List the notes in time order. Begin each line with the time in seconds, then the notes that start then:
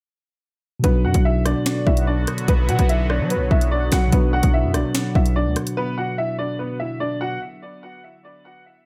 0.80 B2 F#3
0.84 B1 D3 F#3 B3 D4 F#4 B4, kick, closed hi-hat
0.88 F#4
1.04 F#2 F#4 F#5
1.14 B1, kick, closed hi-hat
1.25 E4 E5
1.45 D4 D5, cross-stick, closed hi-hat
1.66 finger snap, snare, closed hi-hat
1.87 B1 E4 E5, kick
1.97 closed hi-hat
2.07 D4 D5
2.27 cross-stick, closed hi-hat
2.38 closed hi-hat
2.48 B1 B3 B4, kick, closed hi-hat
2.69 B2 F#4 F#5, closed hi-hat
2.79 B1, kick, closed hi-hat
2.89 E4 E5, closed hi-hat
3.10 D4 C#5 D5, cross-stick
3.20 F#3
3.30 B3 B4, closed hi-hat
3.36 B1
3.51 B1 E4 E5, kick
3.61 closed hi-hat
3.71 D4 D5
3.92 B1 F#4 F#5, finger snap, kick, cross-stick, snare, closed hi-hat
4.08 B2 F#3
4.12 B1 B3 D4 B4, kick, closed hi-hat
4.17 F#4
4.33 F#4 F#5
4.43 B1, kick, closed hi-hat
4.54 E4 E5
4.64 F#2
4.74 B1 D4 D5, cross-stick, closed hi-hat
4.95 finger snap, snare, closed hi-hat
5.15 B1 E4 E5, kick
5.26 closed hi-hat
5.36 D4 D5
5.46 D2
5.56 cross-stick, closed hi-hat
5.67 closed hi-hat
5.77 B3 B4
5.98 F#4 F#5
6.18 E4 E5
6.39 D4 D5
6.59 B3 B4
6.80 E4 E5
7.00 D4 D5
7.21 F#4 F#5